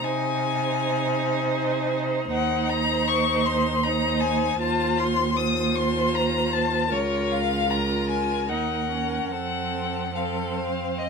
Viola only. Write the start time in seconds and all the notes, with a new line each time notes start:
0.06 D#4
2.32 D#4
3.84 D#4
4.60 F4
5.37 F4
6.91 F4
7.71 F4
8.50 D#4
8.90 C#4
9.31 C4
10.16 C4